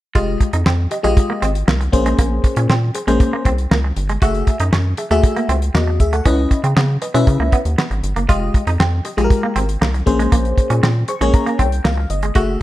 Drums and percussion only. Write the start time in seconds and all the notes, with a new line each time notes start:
0.15 kick, closed hi-hat
0.40 kick, closed hi-hat
0.53 closed hi-hat
0.66 snare, clap
0.91 closed hi-hat
1.05 closed hi-hat
1.17 kick, closed hi-hat
1.42 closed hi-hat
1.55 closed hi-hat
1.68 snare, clap
1.81 closed hi-hat
1.93 kick, closed hi-hat
2.06 closed hi-hat
2.19 kick, closed hi-hat
2.44 kick, closed hi-hat
2.56 closed hi-hat
2.70 snare, clap
2.95 closed hi-hat
3.08 closed hi-hat
3.20 kick, closed hi-hat
3.45 kick, closed hi-hat
3.58 closed hi-hat
3.71 snare, clap
3.96 closed hi-hat
4.09 closed hi-hat
4.22 kick, closed hi-hat
4.34 closed hi-hat
4.47 kick, closed hi-hat
4.60 closed hi-hat
4.73 snare, clap
4.97 closed hi-hat
5.11 closed hi-hat
5.23 kick, closed hi-hat
5.36 closed hi-hat
5.49 closed hi-hat
5.62 closed hi-hat
5.75 snare, clap
6.00 kick, closed hi-hat
6.13 closed hi-hat
6.26 kick, closed hi-hat
6.51 kick, closed hi-hat
6.64 closed hi-hat
6.77 snare, clap
7.02 closed hi-hat
7.15 closed hi-hat
7.27 kick, closed hi-hat
7.52 kick, closed hi-hat
7.65 closed hi-hat
7.78 snare, clap
7.91 closed hi-hat
8.04 closed hi-hat
8.16 closed hi-hat
8.29 kick, closed hi-hat
8.54 kick, closed hi-hat
8.67 closed hi-hat
8.80 snare, clap
9.05 closed hi-hat
9.18 closed hi-hat
9.30 kick, closed hi-hat
9.56 closed hi-hat
9.69 closed hi-hat
9.82 snare, clap
9.94 closed hi-hat
10.07 kick, closed hi-hat
10.20 closed hi-hat
10.32 kick, closed hi-hat
10.45 closed hi-hat
10.58 kick, closed hi-hat
10.70 closed hi-hat
10.83 snare, clap
11.08 closed hi-hat
11.21 closed hi-hat
11.34 kick, closed hi-hat
11.47 closed hi-hat
11.59 kick, closed hi-hat
11.72 closed hi-hat
11.85 snare, clap
12.10 closed hi-hat
12.23 closed hi-hat
12.35 kick, closed hi-hat